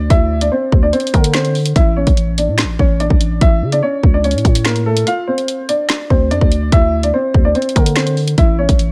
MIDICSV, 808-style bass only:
0, 0, Header, 1, 2, 480
1, 0, Start_track
1, 0, Key_signature, -1, "minor"
1, 0, Tempo, 413793
1, 119, Time_signature, 4, 2, 24, 8
1, 10346, End_track
2, 0, Start_track
2, 0, Title_t, "808-style bass"
2, 0, Program_c, 0, 38
2, 119, Note_on_c, 0, 38, 113
2, 580, Note_off_c, 0, 38, 0
2, 839, Note_on_c, 0, 38, 104
2, 1070, Note_off_c, 0, 38, 0
2, 1320, Note_on_c, 0, 50, 106
2, 2011, Note_off_c, 0, 50, 0
2, 2040, Note_on_c, 0, 33, 113
2, 2385, Note_off_c, 0, 33, 0
2, 2400, Note_on_c, 0, 33, 104
2, 2879, Note_on_c, 0, 45, 100
2, 2897, Note_off_c, 0, 33, 0
2, 3059, Note_on_c, 0, 33, 100
2, 3077, Note_off_c, 0, 45, 0
2, 3230, Note_off_c, 0, 33, 0
2, 3240, Note_on_c, 0, 33, 104
2, 3585, Note_off_c, 0, 33, 0
2, 3600, Note_on_c, 0, 33, 101
2, 3946, Note_off_c, 0, 33, 0
2, 3959, Note_on_c, 0, 33, 108
2, 4199, Note_on_c, 0, 49, 98
2, 4216, Note_off_c, 0, 33, 0
2, 4427, Note_off_c, 0, 49, 0
2, 4679, Note_on_c, 0, 37, 110
2, 5038, Note_on_c, 0, 45, 98
2, 5056, Note_off_c, 0, 37, 0
2, 5153, Note_off_c, 0, 45, 0
2, 5160, Note_on_c, 0, 45, 104
2, 5851, Note_off_c, 0, 45, 0
2, 7080, Note_on_c, 0, 38, 109
2, 7319, Note_on_c, 0, 41, 101
2, 7337, Note_off_c, 0, 38, 0
2, 7433, Note_off_c, 0, 41, 0
2, 7440, Note_on_c, 0, 38, 101
2, 7785, Note_off_c, 0, 38, 0
2, 7799, Note_on_c, 0, 38, 110
2, 8260, Note_off_c, 0, 38, 0
2, 8519, Note_on_c, 0, 38, 104
2, 8750, Note_off_c, 0, 38, 0
2, 8999, Note_on_c, 0, 50, 105
2, 9691, Note_off_c, 0, 50, 0
2, 9718, Note_on_c, 0, 33, 116
2, 10065, Note_off_c, 0, 33, 0
2, 10079, Note_on_c, 0, 33, 105
2, 10346, Note_off_c, 0, 33, 0
2, 10346, End_track
0, 0, End_of_file